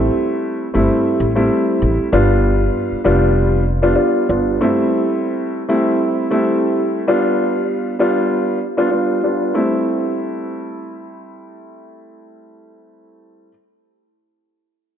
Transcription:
Already playing: grand piano G3 A3 C4 E4
0.74 upright bass G1, grand piano G3 A3 C4 E4
1.20 upright bass A1
1.35 grand piano G3 A3 C4 E4
1.82 upright bass A1
2.12 upright bass G1, grand piano G3 B3 D4 F4
2.92 muted upright bass stroke
3.04 upright bass F1, grand piano G3 B3 D4 F4
3.82 grand piano G3 B3 D4 F4
3.95 grand piano G3 B3 D4 F4
4.29 upright bass G1, grand piano G3 B3 D4 F4
4.61 grand piano G3 A3 C4 E4
5.69 grand piano G3 A3 C4 E4
6.30 grand piano G3 A3 C4 E4
7.08 grand piano G3 B3 D4 F4
7.99 grand piano G3 B3 D4 F4
8.77 grand piano G3 B3 D4 F4
8.90 grand piano G3 B3 D4 F4
9.23 grand piano G3 B3 D4 F4
9.54 grand piano G3 A3 C4 E4

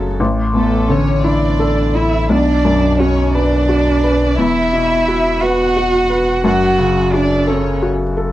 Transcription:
Already playing: sub bass F#1, felt piano F#2 C#3 C#4 F#4 A4, cello A3, violin section A4
0.20 sub bass A1, felt piano A1
0.54 felt piano E2, cello A3, violin section A4
0.88 felt piano D3, cello C#4, violin section C#5
1.24 cello D4, felt piano E4, violin section D5
1.59 felt piano A4
1.95 felt piano E4, cello E4, violin section E5
2.29 felt piano B1, sub bass B1, cello D4, violin section D5
2.65 felt piano F#2
2.99 cello C#4, felt piano F#4, violin section C#5
3.34 cello D4, felt piano B4, violin section D5
3.69 felt piano F#4
4.04 felt piano B4
4.38 sub bass E1, felt piano E2, cello E4, violin section E5
4.73 felt piano B2
5.08 felt piano F#4
5.42 cello F#4, felt piano B4, violin section F#5
5.77 felt piano F#4
6.10 felt piano B4
6.44 sub bass F#1, felt piano F#2, cello F#4, violin section F#5
6.78 felt piano C#3
7.13 cello D4, felt piano F#4, violin section D5
7.47 cello C#4, felt piano A4, violin section C#5
7.82 felt piano F#4
8.17 felt piano A4

